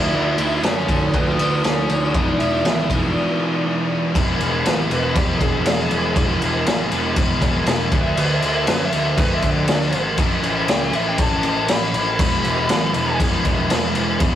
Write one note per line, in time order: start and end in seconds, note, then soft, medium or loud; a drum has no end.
0.00 0.12 D2 medium
0.00 0.11 D3 medium
0.00 0.12 A3 medium
0.00 0.13 D4 medium
0.00 0.59 E4 medium
0.00 0.14 F#4 medium
0.00 0.59 E5 loud
0.13 0.37 D2 loud
0.13 0.62 D3 loud
0.13 0.39 A3 loud
0.13 0.39 D4 loud
0.13 0.37 F#4 loud
0.38 0.62 D2 medium
0.38 0.63 A3 medium
0.38 0.64 D4 medium
0.38 0.64 F#4 medium
0.38 ride medium
0.63 0.87 F#2 loud
0.63 0.90 D3 medium
0.63 0.89 A3 medium
0.63 1.11 C#4 medium
0.63 0.89 D4 medium
0.63 0.88 F#4 medium
0.63 1.14 C#5 medium
0.63 snare loud
0.63 ride loud
0.88 1.12 D2 medium
0.88 1.13 D3 medium
0.88 1.14 A3 medium
0.88 1.14 D4 medium
0.88 1.15 F#4 medium
0.88 kick medium
0.88 ride medium
1.14 1.38 D2 loud
1.14 1.63 D3 medium
1.14 1.40 A3 medium
1.14 1.61 B3 medium
1.14 1.39 D4 medium
1.14 1.38 F#4 loud
1.14 1.61 B4 medium
1.14 kick medium
1.14 ride loud
1.38 1.63 D2 medium
1.38 1.64 A3 medium
1.38 1.65 D4 medium
1.38 1.65 F#4 medium
1.38 ride medium
1.64 1.88 D2 medium
1.64 2.13 D3 medium
1.64 1.91 A3 loud
1.64 2.11 C#4 medium
1.64 1.90 D4 loud
1.64 1.89 F#4 loud
1.64 2.15 C#5 medium
1.64 snare loud
1.64 ride loud
1.90 2.16 D2 medium
1.90 2.14 A3 medium
1.90 2.14 D4 medium
1.90 2.13 F#4 medium
1.90 ride medium
2.14 2.38 E1 loud
2.14 4.13 E2 medium
2.14 4.15 B2 loud
2.14 2.64 E3 loud
2.14 2.63 G#3 loud
2.14 2.41 B3 loud
2.14 2.38 D4 medium
2.14 2.40 D4 loud
2.14 2.66 E4 loud
2.14 2.39 G#4 loud
2.14 2.41 D5 medium
2.14 kick loud
2.14 ride loud
2.39 2.63 E1 medium
2.39 2.64 B3 medium
2.39 2.65 D4 medium
2.39 2.86 E4 medium
2.39 2.66 G#4 medium
2.39 2.86 E5 medium
2.39 ride medium
2.64 2.88 G#1 loud
2.64 2.91 E3 medium
2.64 2.90 G#3 medium
2.64 2.91 B3 medium
2.64 2.90 D4 medium
2.64 2.87 E4 medium
2.64 2.89 G#4 medium
2.64 snare loud
2.64 ride loud
2.88 3.14 E1 medium
2.88 3.14 E3 medium
2.88 3.40 G#3 medium
2.88 3.15 B3 medium
2.88 3.15 D4 medium
2.88 3.38 E4 medium
2.88 3.16 G#4 loud
2.88 kick medium
2.88 ride medium
3.15 3.64 E3 medium
3.15 3.41 B3 medium
3.15 3.39 D4 medium
3.15 3.39 G#4 medium
3.39 3.64 G#3 medium
3.39 3.65 B3 medium
3.39 3.66 D4 medium
3.39 3.66 E4 medium
3.39 3.66 G#4 medium
3.65 4.14 E3 loud
3.65 4.14 G#3 medium
3.65 3.91 B3 loud
3.65 3.90 D4 loud
3.65 4.15 E4 loud
3.65 3.89 G#4 loud
3.90 4.15 B3 medium
3.90 4.14 D4 medium
3.90 4.14 G#4 medium
4.14 4.39 E1 loud
4.14 6.13 E2 medium
4.14 6.15 B2 loud
4.14 4.65 E3 loud
4.14 4.41 G#3 loud
4.14 4.40 B3 loud
4.14 4.39 E4 loud
4.14 kick loud
4.14 crash medium
4.40 4.65 E1 medium
4.40 4.66 G#3 medium
4.40 4.66 B3 medium
4.40 4.67 E4 medium
4.40 crash medium
4.65 4.90 G#1 loud
4.65 4.93 E3 medium
4.65 4.91 G#3 medium
4.65 4.90 B3 medium
4.65 4.90 E4 medium
4.65 4.78 B4 loud
4.65 snare loud
4.65 crash medium
4.78 4.91 G4 loud
4.90 5.14 E1 medium
4.90 5.15 E3 medium
4.90 5.15 G#3 medium
4.90 5.16 B3 medium
4.90 5.17 E4 medium
4.90 5.15 B4 medium
4.90 crash medium
5.15 5.40 E1 medium
5.15 5.65 E3 medium
5.15 5.42 G#3 medium
5.15 5.41 B3 medium
5.15 5.41 E4 loud
5.15 5.39 G4 medium
5.15 kick loud
5.15 crash medium
5.39 5.65 E1 medium
5.39 5.66 G#3 medium
5.39 5.66 B3 medium
5.39 5.68 E4 medium
5.39 6.38 G#4 loud
5.39 kick medium
5.39 crash medium
5.66 5.90 E1 loud
5.66 6.16 E3 loud
5.66 5.92 G#3 loud
5.66 5.91 B3 loud
5.66 5.91 E4 loud
5.66 snare loud
5.66 crash medium
5.80 snare soft
5.91 6.15 E1 medium
5.91 6.16 G#3 medium
5.91 6.16 B3 medium
5.91 6.18 E4 medium
5.91 crash medium
6.15 6.40 E1 loud
6.15 7.90 E2 loud
6.15 7.90 B2 loud
6.15 6.66 E3 loud
6.15 6.43 G#3 loud
6.15 6.42 B3 loud
6.15 6.42 E4 loud
6.15 kick loud
6.15 crash medium
6.41 6.65 E1 loud
6.41 6.66 G#3 medium
6.41 6.67 B3 medium
6.41 6.68 E4 medium
6.41 crash medium
6.66 6.91 G#1 loud
6.66 6.94 E3 medium
6.66 6.92 G#3 medium
6.66 6.92 B3 medium
6.66 6.92 E4 medium
6.66 snare loud
6.66 crash medium
6.91 7.15 E1 loud
6.91 7.17 E3 medium
6.91 7.17 G#3 medium
6.91 7.18 B3 medium
6.91 7.19 E4 medium
6.91 crash medium
7.16 7.41 E1 medium
7.16 7.68 E3 medium
7.16 7.44 G#3 medium
7.16 7.43 B3 medium
7.16 7.42 E4 loud
7.16 kick loud
7.16 crash medium
7.42 7.66 E1 medium
7.42 7.68 G#3 medium
7.42 7.68 B3 medium
7.42 7.70 E4 medium
7.42 kick medium
7.42 crash medium
7.66 7.91 E1 medium
7.66 7.95 E3 loud
7.66 7.92 G#3 loud
7.66 7.92 B3 loud
7.66 snare loud
7.66 crash medium
7.70 7.93 E4 loud
7.90 8.16 D2 loud
7.90 9.91 D3 medium
7.90 8.18 D4 medium
7.90 8.19 F#4 medium
7.90 kick loud
7.90 crash medium
7.94 8.17 D3 medium
7.94 8.19 A3 medium
8.02 8.18 E5 loud
8.17 8.41 D2 loud
8.17 8.66 D3 loud
8.17 8.44 A3 medium
8.17 8.43 D4 loud
8.17 8.41 F#4 loud
8.17 8.34 B4 loud
8.17 crash medium
8.35 8.50 E5 loud
8.42 8.66 D2 loud
8.42 8.68 A3 medium
8.42 8.67 D4 medium
8.42 8.68 F#4 medium
8.42 crash medium
8.51 8.67 E5 loud
8.67 8.91 F#2 loud
8.67 8.93 D3 medium
8.67 8.94 A3 medium
8.67 8.92 D4 medium
8.67 8.92 F#4 medium
8.67 8.84 B4 medium
8.67 snare loud
8.67 crash medium
8.85 9.00 E5 medium
8.92 9.17 D2 medium
8.92 9.16 D3 medium
8.92 9.17 A3 medium
8.92 9.18 D4 medium
8.92 9.18 F#4 loud
8.92 crash medium
9.02 9.18 E5 loud
9.17 9.42 D2 loud
9.17 9.67 D3 medium
9.17 9.44 A3 medium
9.17 9.43 D4 medium
9.17 9.42 F#4 loud
9.17 9.34 B4 medium
9.17 kick loud
9.17 crash medium
9.34 9.50 E5 medium
9.42 9.67 D2 loud
9.42 9.68 A3 medium
9.42 9.69 D4 medium
9.42 9.69 F#4 medium
9.42 kick medium
9.42 crash medium
9.50 9.99 D5 loud
9.68 9.92 D2 loud
9.68 10.17 D3 loud
9.68 9.94 A3 loud
9.68 9.94 D4 loud
9.68 9.92 F#4 loud
9.68 snare loud
9.68 crash medium
9.81 snare soft
9.92 10.17 G#1 medium
9.92 10.18 A3 medium
9.92 10.18 D4 medium
9.92 10.17 F#4 medium
9.92 crash medium
10.18 10.42 A1 loud
10.18 10.68 A2 loud
10.18 10.69 E3 medium
10.18 10.45 A3 loud
10.18 10.44 C#4 loud
10.18 10.44 E4 loud
10.18 kick loud
10.18 crash medium
10.43 10.67 A1 medium
10.43 10.69 A3 medium
10.43 10.69 C#4 medium
10.43 10.71 E4 medium
10.43 crash medium
10.68 10.93 C#2 loud
10.68 10.95 E3 medium
10.68 10.94 A3 medium
10.68 10.94 C#4 medium
10.68 10.94 E4 medium
10.68 10.93 G5 loud
10.68 snare loud
10.68 crash medium
10.93 11.17 A1 medium
10.93 11.45 A2 medium
10.93 11.19 E3 medium
10.93 11.19 A3 medium
10.93 11.19 C#4 loud
10.93 11.21 E4 medium
10.93 11.07 E5 loud
10.93 crash medium
11.08 11.19 G5 medium
11.18 11.42 A1 loud
11.18 11.69 E3 medium
11.18 11.45 A3 medium
11.18 11.45 C#4 medium
11.18 11.45 E4 medium
11.18 kick loud
11.18 crash medium
11.22 11.44 A5 medium
11.43 11.68 A1 medium
11.43 11.69 A3 medium
11.43 11.69 C#4 medium
11.43 11.71 E4 medium
11.43 11.72 A5 medium
11.43 crash medium
11.68 11.93 A1 medium
11.68 12.18 A2 loud
11.68 12.19 E3 loud
11.68 11.95 A3 medium
11.68 11.94 C#4 medium
11.68 11.94 E4 loud
11.68 12.19 B5 medium
11.68 snare loud
11.68 crash medium
11.82 snare soft
11.94 12.18 A1 medium
11.94 12.19 A3 medium
11.94 12.18 C#4 medium
11.94 12.21 E4 medium
11.94 crash medium
12.19 12.43 E1 medium
12.19 14.18 E2 medium
12.19 14.19 B2 medium
12.19 12.69 E3 medium
12.19 12.46 G#3 medium
12.19 12.45 B3 loud
12.19 12.44 E4 loud
12.19 13.18 B5 loud
12.19 kick loud
12.19 crash medium
12.44 12.68 E1 medium
12.44 12.70 G#3 medium
12.44 12.71 B3 medium
12.44 12.72 E4 medium
12.44 crash medium
12.69 12.93 G#1 loud
12.69 12.96 E3 medium
12.69 12.96 G#3 medium
12.69 12.94 B3 medium
12.69 12.94 E4 medium
12.69 snare loud
12.69 crash medium
12.94 13.18 E1 medium
12.94 13.19 E3 medium
12.94 13.20 G#3 medium
12.94 13.20 B3 medium
12.94 13.21 E4 medium
12.94 crash medium
13.20 13.44 E1 loud
13.20 13.70 E3 medium
13.20 13.45 G#3 medium
13.20 13.45 B3 medium
13.20 13.44 E4 loud
13.20 kick loud
13.20 crash medium
13.45 13.69 E1 loud
13.45 13.70 G#3 medium
13.45 13.70 B3 medium
13.45 13.71 E4 medium
13.45 kick medium
13.45 crash medium
13.70 13.94 E1 loud
13.70 14.20 E3 loud
13.70 13.96 G#3 loud
13.70 13.94 B3 loud
13.70 13.94 E4 loud
13.70 snare loud
13.70 crash medium
13.94 14.20 E1 medium
13.94 14.20 G#3 medium
13.94 14.20 B3 medium
13.94 14.21 E4 medium
13.94 crash medium
14.20 14.35 E1 loud
14.20 14.35 E2 loud
14.20 14.35 B2 loud
14.20 14.35 E3 medium
14.20 14.35 G#3 medium
14.20 14.35 B3 loud
14.20 14.35 E4 loud
14.20 kick loud
14.20 crash medium